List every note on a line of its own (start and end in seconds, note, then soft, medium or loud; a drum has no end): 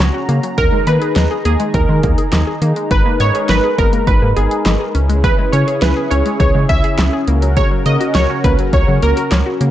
0.00 0.11 C#2 loud
0.00 0.54 C#3 medium
0.00 0.54 C#4 medium
0.00 0.25 F#4 medium
0.00 0.55 F#4 medium
0.00 0.11 C#5 medium
0.00 2.87 A#5 medium
0.00 snare loud
0.00 clap medium
0.00 closed hi-hat medium
0.14 0.25 F#4 medium
0.29 0.40 C#3 loud
0.29 0.40 A#3 medium
0.29 closed hi-hat medium
0.43 0.55 F#3 medium
0.43 closed hi-hat medium
0.58 0.69 D#2 loud
0.58 2.89 D#3 medium
0.58 0.69 D#3 medium
0.58 4.91 D#4 medium
0.58 2.88 G#4 medium
0.58 0.88 A#4 loud
0.58 kick loud
0.58 closed hi-hat medium
0.72 0.84 G#3 medium
0.87 0.98 D#3 loud
0.87 0.98 A#3 medium
0.87 1.41 B4 loud
0.87 closed hi-hat medium
1.02 1.13 G#4 medium
1.02 closed hi-hat medium
1.16 1.27 D#2 loud
1.16 1.27 D#5 medium
1.16 snare loud
1.16 closed hi-hat medium
1.31 1.42 G#4 medium
1.45 1.56 D#2 loud
1.45 1.57 A#3 medium
1.45 1.75 G#4 medium
1.45 closed hi-hat medium
1.60 1.71 G#3 medium
1.60 closed hi-hat medium
1.74 1.85 D#2 loud
1.74 1.86 D#3 medium
1.74 2.58 A#4 loud
1.74 kick loud
1.74 closed hi-hat medium
1.89 2.00 D#3 medium
1.89 2.00 G#3 medium
2.03 2.15 D#2 medium
2.03 2.15 A#3 medium
2.03 kick loud
2.03 closed hi-hat medium
2.18 2.29 G#4 medium
2.18 closed hi-hat medium
2.32 2.44 D#2 loud
2.32 2.44 D#5 medium
2.32 snare loud
2.32 clap medium
2.32 closed hi-hat medium
2.47 2.58 G#4 medium
2.62 2.73 D#3 loud
2.62 2.73 A#3 medium
2.62 closed hi-hat medium
2.76 2.88 G#3 medium
2.76 closed hi-hat medium
2.91 3.02 G#1 loud
2.91 3.02 D#3 medium
2.91 4.93 G#3 medium
2.91 4.93 A#4 medium
2.91 4.93 B4 medium
2.91 3.21 B4 loud
2.91 kick loud
2.91 closed hi-hat medium
3.06 3.17 A#3 medium
3.20 3.31 G#2 loud
3.20 3.31 B3 medium
3.20 3.50 C#5 loud
3.20 closed hi-hat medium
3.35 3.46 G#4 medium
3.35 closed hi-hat soft
3.49 3.60 G#1 loud
3.49 3.79 B4 loud
3.49 3.60 D#5 loud
3.49 snare loud
3.49 closed hi-hat medium
3.64 3.75 G#4 medium
3.78 3.90 G#1 loud
3.78 3.90 B3 medium
3.78 4.08 A#4 loud
3.78 kick medium
3.78 closed hi-hat medium
3.93 4.04 A#3 medium
3.93 closed hi-hat medium
4.07 4.19 G#1 loud
4.07 4.19 D#3 medium
4.07 4.37 B4 loud
4.07 kick loud
4.07 closed hi-hat medium
4.22 4.33 G#2 medium
4.22 4.33 A#3 medium
4.36 4.48 G#1 loud
4.36 4.48 B3 medium
4.36 4.91 G#4 medium
4.36 closed hi-hat medium
4.51 4.62 G#4 medium
4.51 closed hi-hat medium
4.65 4.77 G#1 loud
4.65 4.77 D#5 medium
4.65 snare loud
4.65 clap medium
4.65 closed hi-hat medium
4.80 4.92 G#4 medium
4.94 5.29 C#2 loud
4.94 9.71 C#3 medium
4.94 7.25 C#4 medium
4.94 5.06 C#4 medium
4.94 7.25 E4 medium
4.94 7.25 G#4 medium
4.94 closed hi-hat medium
5.09 5.21 G#3 medium
5.09 closed hi-hat medium
5.24 5.35 E3 medium
5.24 5.54 B4 medium
5.24 kick loud
5.24 closed hi-hat medium
5.39 5.50 G#3 medium
5.52 5.64 C#3 loud
5.52 5.64 C#4 medium
5.52 5.83 C#5 medium
5.52 closed hi-hat medium
5.67 5.79 G#4 medium
5.67 closed hi-hat medium
5.82 5.93 C#2 loud
5.82 6.12 B4 medium
5.82 5.93 E5 medium
5.82 snare loud
5.82 closed hi-hat medium
5.96 6.08 G#4 medium
6.11 6.23 C#2 loud
6.11 6.22 C#4 medium
6.11 6.39 C#5 loud
6.11 closed hi-hat medium
6.26 6.37 G#3 medium
6.26 closed hi-hat medium
6.40 6.51 C#2 loud
6.40 6.52 E3 medium
6.40 6.70 C#5 loud
6.40 kick loud
6.40 closed hi-hat medium
6.55 6.66 C#3 loud
6.55 6.66 G#3 medium
6.69 6.81 C#2 loud
6.69 6.81 C#4 medium
6.69 7.24 E5 loud
6.69 kick loud
6.69 closed hi-hat medium
6.84 6.95 G#4 medium
6.84 closed hi-hat medium
6.98 7.10 C#2 loud
6.98 7.10 E5 medium
6.98 snare loud
6.98 clap medium
6.98 closed hi-hat medium
7.13 7.24 G#4 medium
7.28 7.61 C#2 loud
7.28 7.39 A#3 medium
7.28 9.71 C#4 medium
7.28 9.71 F#4 medium
7.28 9.71 A#4 loud
7.28 closed hi-hat medium
7.42 7.54 F#3 medium
7.42 closed hi-hat medium
7.57 7.68 C#3 medium
7.57 7.70 C#5 loud
7.57 kick loud
7.57 closed hi-hat medium
7.71 7.83 F#3 medium
7.86 7.97 C#3 loud
7.86 7.97 A#3 medium
7.86 8.16 D#5 loud
7.86 closed hi-hat medium
8.00 8.12 F#4 medium
8.00 closed hi-hat medium
8.15 8.26 C#2 loud
8.15 8.45 C#5 loud
8.15 8.26 C#5 medium
8.15 snare loud
8.15 closed hi-hat medium
8.30 8.41 F#4 medium
8.44 8.56 C#2 loud
8.44 8.56 A#3 medium
8.44 8.57 B4 medium
8.44 kick medium
8.44 closed hi-hat medium
8.59 8.70 F#3 medium
8.59 closed hi-hat medium
8.73 8.84 C#2 loud
8.73 8.85 C#3 medium
8.73 9.04 C#5 loud
8.73 kick loud
8.73 closed hi-hat medium
8.88 8.99 C#3 medium
8.88 8.99 F#3 medium
9.02 9.14 C#2 loud
9.02 9.14 A#3 medium
9.02 9.57 A#4 medium
9.02 closed hi-hat medium
9.17 9.28 F#4 medium
9.17 closed hi-hat medium
9.31 9.43 C#2 loud
9.31 9.43 C#5 medium
9.31 snare loud
9.31 clap medium
9.31 closed hi-hat medium
9.46 9.57 F#4 medium
9.61 9.71 C#3 loud
9.61 9.71 A#3 medium
9.61 closed hi-hat medium